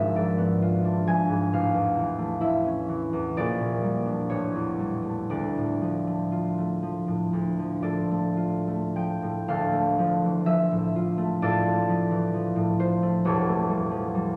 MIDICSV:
0, 0, Header, 1, 2, 480
1, 0, Start_track
1, 0, Key_signature, -1, "minor"
1, 0, Tempo, 910470
1, 779, Time_signature, 4, 2, 24, 8
1, 1262, Tempo, 947867
1, 2222, Tempo, 1020408
1, 3662, Tempo, 1075269
1, 4622, Tempo, 978793
1, 5102, Tempo, 923077
1, 7122, End_track
2, 0, Start_track
2, 0, Title_t, "Harp"
2, 0, Program_c, 0, 46
2, 0, Note_on_c, 0, 32, 50
2, 0, Note_on_c, 0, 44, 45
2, 0, Note_on_c, 0, 53, 39
2, 0, Note_on_c, 0, 59, 49
2, 0, Note_on_c, 0, 62, 46
2, 0, Note_on_c, 0, 65, 47
2, 0, Note_on_c, 0, 76, 98
2, 0, Note_on_c, 0, 80, 94
2, 73, Note_off_c, 0, 44, 0
2, 78, Note_on_c, 0, 44, 42
2, 83, Note_on_c, 0, 74, 69
2, 193, Note_off_c, 0, 59, 0
2, 200, Note_on_c, 0, 59, 46
2, 238, Note_off_c, 0, 76, 0
2, 320, Note_off_c, 0, 65, 0
2, 326, Note_on_c, 0, 65, 49
2, 439, Note_off_c, 0, 62, 0
2, 445, Note_on_c, 0, 62, 45
2, 558, Note_off_c, 0, 53, 0
2, 559, Note_off_c, 0, 80, 0
2, 563, Note_on_c, 0, 53, 41
2, 567, Note_on_c, 0, 80, 75
2, 672, Note_off_c, 0, 44, 0
2, 678, Note_on_c, 0, 44, 36
2, 805, Note_on_c, 0, 33, 51
2, 808, Note_off_c, 0, 32, 0
2, 808, Note_off_c, 0, 44, 0
2, 808, Note_off_c, 0, 59, 0
2, 808, Note_off_c, 0, 74, 0
2, 809, Note_on_c, 0, 77, 79
2, 811, Note_off_c, 0, 53, 0
2, 811, Note_off_c, 0, 62, 0
2, 811, Note_off_c, 0, 65, 0
2, 811, Note_off_c, 0, 80, 0
2, 919, Note_on_c, 0, 40, 42
2, 1038, Note_on_c, 0, 52, 45
2, 1151, Note_on_c, 0, 57, 41
2, 1268, Note_on_c, 0, 64, 47
2, 1270, Note_on_c, 0, 76, 59
2, 1391, Note_on_c, 0, 61, 44
2, 1506, Note_off_c, 0, 52, 0
2, 1512, Note_on_c, 0, 52, 43
2, 1607, Note_off_c, 0, 77, 0
2, 1628, Note_off_c, 0, 40, 0
2, 1634, Note_on_c, 0, 40, 41
2, 1756, Note_on_c, 0, 74, 69
2, 1759, Note_on_c, 0, 34, 53
2, 1760, Note_off_c, 0, 64, 0
2, 1760, Note_off_c, 0, 76, 0
2, 1762, Note_off_c, 0, 57, 0
2, 1762, Note_off_c, 0, 61, 0
2, 1764, Note_off_c, 0, 52, 0
2, 1765, Note_off_c, 0, 40, 0
2, 1769, Note_off_c, 0, 33, 0
2, 1872, Note_on_c, 0, 46, 35
2, 1986, Note_on_c, 0, 55, 37
2, 2104, Note_on_c, 0, 62, 41
2, 2225, Note_on_c, 0, 73, 63
2, 2228, Note_on_c, 0, 33, 44
2, 2242, Note_off_c, 0, 62, 0
2, 2246, Note_off_c, 0, 46, 0
2, 2248, Note_off_c, 0, 74, 0
2, 2249, Note_off_c, 0, 34, 0
2, 2346, Note_on_c, 0, 40, 35
2, 2452, Note_off_c, 0, 55, 0
2, 2458, Note_on_c, 0, 55, 33
2, 2567, Note_on_c, 0, 57, 29
2, 2695, Note_on_c, 0, 38, 45
2, 2698, Note_on_c, 0, 74, 56
2, 2714, Note_off_c, 0, 73, 0
2, 2715, Note_off_c, 0, 33, 0
2, 2715, Note_off_c, 0, 55, 0
2, 2718, Note_off_c, 0, 40, 0
2, 2824, Note_on_c, 0, 45, 31
2, 2938, Note_on_c, 0, 53, 37
2, 3052, Note_off_c, 0, 57, 0
2, 3058, Note_on_c, 0, 57, 32
2, 3176, Note_on_c, 0, 65, 36
2, 3293, Note_off_c, 0, 57, 0
2, 3299, Note_on_c, 0, 57, 35
2, 3409, Note_off_c, 0, 53, 0
2, 3414, Note_on_c, 0, 53, 34
2, 3526, Note_off_c, 0, 45, 0
2, 3532, Note_on_c, 0, 45, 32
2, 3646, Note_off_c, 0, 38, 0
2, 3651, Note_on_c, 0, 38, 41
2, 3761, Note_off_c, 0, 53, 0
2, 3766, Note_on_c, 0, 53, 31
2, 3866, Note_off_c, 0, 74, 0
2, 3867, Note_off_c, 0, 45, 0
2, 3870, Note_off_c, 0, 65, 0
2, 3871, Note_on_c, 0, 45, 31
2, 3873, Note_on_c, 0, 74, 57
2, 3874, Note_on_c, 0, 65, 44
2, 3878, Note_on_c, 0, 69, 42
2, 3995, Note_off_c, 0, 57, 0
2, 4001, Note_on_c, 0, 57, 32
2, 4111, Note_off_c, 0, 65, 0
2, 4116, Note_on_c, 0, 65, 33
2, 4247, Note_off_c, 0, 57, 0
2, 4253, Note_on_c, 0, 57, 36
2, 4374, Note_off_c, 0, 53, 0
2, 4378, Note_on_c, 0, 53, 32
2, 4380, Note_on_c, 0, 79, 56
2, 4493, Note_off_c, 0, 45, 0
2, 4498, Note_on_c, 0, 45, 29
2, 4608, Note_off_c, 0, 38, 0
2, 4612, Note_on_c, 0, 38, 48
2, 4613, Note_off_c, 0, 69, 0
2, 4614, Note_on_c, 0, 77, 63
2, 4615, Note_off_c, 0, 74, 0
2, 4618, Note_on_c, 0, 69, 50
2, 4620, Note_on_c, 0, 74, 48
2, 4635, Note_off_c, 0, 45, 0
2, 4726, Note_off_c, 0, 57, 0
2, 4732, Note_on_c, 0, 57, 45
2, 4786, Note_off_c, 0, 79, 0
2, 4854, Note_off_c, 0, 53, 0
2, 4860, Note_on_c, 0, 53, 47
2, 4983, Note_on_c, 0, 52, 38
2, 5085, Note_off_c, 0, 53, 0
2, 5091, Note_on_c, 0, 53, 40
2, 5093, Note_on_c, 0, 76, 81
2, 5187, Note_off_c, 0, 52, 0
2, 5223, Note_on_c, 0, 45, 41
2, 5344, Note_off_c, 0, 65, 0
2, 5350, Note_on_c, 0, 65, 48
2, 5458, Note_off_c, 0, 57, 0
2, 5464, Note_on_c, 0, 57, 44
2, 5585, Note_off_c, 0, 74, 0
2, 5586, Note_off_c, 0, 45, 0
2, 5589, Note_off_c, 0, 65, 0
2, 5591, Note_off_c, 0, 69, 0
2, 5591, Note_on_c, 0, 45, 47
2, 5592, Note_on_c, 0, 74, 89
2, 5594, Note_on_c, 0, 65, 65
2, 5599, Note_on_c, 0, 69, 66
2, 5696, Note_off_c, 0, 57, 0
2, 5703, Note_on_c, 0, 57, 41
2, 5828, Note_off_c, 0, 53, 0
2, 5835, Note_on_c, 0, 53, 45
2, 5918, Note_off_c, 0, 76, 0
2, 5948, Note_on_c, 0, 52, 36
2, 6060, Note_off_c, 0, 53, 0
2, 6066, Note_on_c, 0, 53, 44
2, 6153, Note_off_c, 0, 52, 0
2, 6175, Note_off_c, 0, 45, 0
2, 6181, Note_on_c, 0, 45, 49
2, 6300, Note_off_c, 0, 65, 0
2, 6305, Note_on_c, 0, 65, 50
2, 6307, Note_on_c, 0, 72, 65
2, 6419, Note_off_c, 0, 57, 0
2, 6425, Note_on_c, 0, 57, 43
2, 6541, Note_on_c, 0, 28, 55
2, 6544, Note_on_c, 0, 73, 79
2, 6545, Note_off_c, 0, 69, 0
2, 6545, Note_on_c, 0, 40, 58
2, 6549, Note_on_c, 0, 67, 61
2, 6552, Note_on_c, 0, 69, 60
2, 6562, Note_off_c, 0, 77, 0
2, 6563, Note_off_c, 0, 38, 0
2, 6564, Note_off_c, 0, 45, 0
2, 6566, Note_off_c, 0, 65, 0
2, 6567, Note_off_c, 0, 53, 0
2, 6570, Note_off_c, 0, 74, 0
2, 6658, Note_off_c, 0, 57, 0
2, 6664, Note_on_c, 0, 57, 44
2, 6712, Note_off_c, 0, 72, 0
2, 6773, Note_on_c, 0, 55, 44
2, 6884, Note_on_c, 0, 53, 38
2, 7002, Note_off_c, 0, 55, 0
2, 7008, Note_on_c, 0, 55, 46
2, 7093, Note_off_c, 0, 53, 0
2, 7122, Note_off_c, 0, 28, 0
2, 7122, Note_off_c, 0, 40, 0
2, 7122, Note_off_c, 0, 55, 0
2, 7122, Note_off_c, 0, 57, 0
2, 7122, Note_off_c, 0, 67, 0
2, 7122, Note_off_c, 0, 69, 0
2, 7122, Note_off_c, 0, 73, 0
2, 7122, End_track
0, 0, End_of_file